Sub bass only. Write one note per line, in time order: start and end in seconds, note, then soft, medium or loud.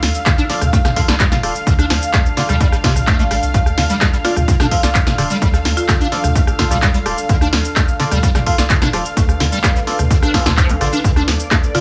0.03 0.11 D2 medium
0.61 0.69 D2 medium
1.08 1.16 C2 medium
1.43 1.51 D1 loud
1.67 1.83 D2 loud
1.90 1.98 D2 medium
2.49 2.57 D2 medium
2.96 3.04 C2 loud
3.19 3.27 A1 loud
3.31 3.39 A1 loud
3.43 3.51 C2 loud
3.54 3.70 D2 loud
3.77 3.86 D2 medium
4.36 4.44 D2 medium
4.83 4.91 C2 medium
5.18 5.26 D1 loud
5.42 5.58 D2 loud
5.65 5.73 D2 medium
6.24 6.32 D2 medium
6.71 6.79 C2 loud
7.06 7.14 D1 loud
7.29 7.45 D2 loud
7.53 7.61 D2 medium
8.11 8.19 D2 medium
8.58 8.66 C2 medium
8.93 9.01 D1 loud
9.17 9.33 D2 loud
9.40 9.48 D2 medium
9.99 10.07 D2 medium
10.46 10.75 D2 medium
10.81 10.89 A1 medium
11.04 11.20 D2 loud
11.28 11.36 D2 medium